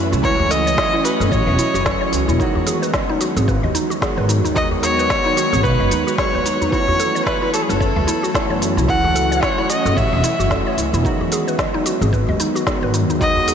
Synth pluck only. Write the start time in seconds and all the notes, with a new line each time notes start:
Already playing: E4
0.12 E4
0.24 E4
0.39 F#4
0.50 A4
0.66 C#5
0.78 E5
0.93 E4
1.04 F#4
1.20 A4
1.32 C#5
1.47 E5
1.58 E4
1.74 F#4
1.85 A4
2.01 C#5
2.12 E4
2.28 E4
2.40 D#4
2.55 F#4
2.67 G#4
2.82 B4
2.94 D#5
3.09 D#4
3.21 F#4
3.36 G#4
3.48 B4
3.63 D#5
3.75 D#4
3.90 F#4
4.02 G#4
4.17 B4
4.29 D#4
4.45 D#4
4.55 D#4
4.71 F#4
4.83 G#4
4.99 B4
5.10 D#5
5.25 D#4
5.37 F#4
5.53 G#4
5.64 B4
5.80 D#5
5.91 D#4
6.07 F#4
6.19 G#4
6.34 B4
6.46 D#4
6.61 D#4
6.73 E4
6.88 F#4
7.00 A4
7.15 C#5
7.27 E5
7.42 E4
7.54 F#4
7.69 A4
7.80 C#5
7.96 E5
8.07 E4
8.23 F#4
8.34 A4
8.50 C#5
8.61 E4
8.77 E4
8.88 E4
9.04 F#4
9.15 A4
9.31 C#5
9.42 E5
9.58 E4
9.70 F#4
9.86 A4
9.97 C#5
10.13 E5
10.24 E4
10.39 F#4
10.51 A4
10.67 C#5
10.78 E4
10.94 E4
11.05 D#4
11.21 F#4
11.32 G#4
11.48 B4
11.59 D#5
11.74 D#4
11.86 F#4
12.01 G#4
12.13 B4
12.29 D#5
12.40 D#4
12.55 F#4
12.67 G#4
12.83 B4
12.94 D#4
13.10 D#4
13.21 D#4
13.37 F#4
13.48 G#4